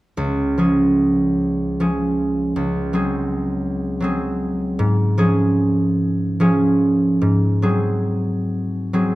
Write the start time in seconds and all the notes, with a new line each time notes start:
0.17 C#2
0.58 F3 C#4 G#4
1.80 F3 C#4 G#4
2.56 C#2
2.93 F#3 C4 G#4
4.00 F#3 C4 G#4
4.79 G#2
5.18 F3 C#4 G#4
6.40 F3 C#4 G#4
7.22 G#2
7.62 F#3 C4 G#4
8.93 F#3 C4 G#4